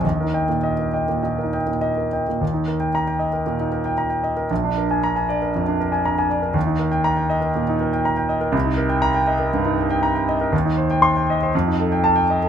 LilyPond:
\new Staff \with { instrumentName = "Grand piano" } { \time 4/4 \key ees \major \tempo 4 = 118 << { ees''16 bes'16 <ees'' g''>16 bes,16 ees''16 bes'16 <ees'' g''>16 bes,16 ees''16 bes'16 <ees'' g''>16 bes,16 ees''16 bes'16 <ees'' g''>16 bes,16 | r4 bes''8 r2 r8 | r4 bes''8 r2 r8 | r4 bes''8 r2 r8 |
r4 bes''8 r2 r8 | \key c \dorian r4 c'''8 r4. a''8 r8 | } \\ { \tuplet 3/2 { ees,8 ees'4 } r4 \tuplet 3/2 { bes,8 ees'4 } r4 | ees,16 ees'16 bes'16 g''8 g''16 ees''16 bes'16 bes,16 ees'16 bes'16 g''16 bes''16 g''16 ees''16 bes'16 | bes,,16 d'16 bes'16 aes''8 aes''16 d''16 bes'16 f,16 d'16 bes'16 aes''16 bes''16 aes''16 d''16 bes'16 | ees,16 ees'16 bes'16 g''8 g''16 ees''16 bes'16 bes,16 ees'16 bes'16 g''16 bes''16 g''16 ees''16 bes'16 |
c,16 ees'16 bes'16 g''8 g''16 ees''16 bes'16 g,16 ees'16 bes'16 g''16 bes''16 g''16 ees''16 bes'16 | ees,16 ees'16 c''16 g''8 g''16 ees''16 c''16 f,16 ees'16 a'16 g''8 g''16 ees''16 a'16 | } >> }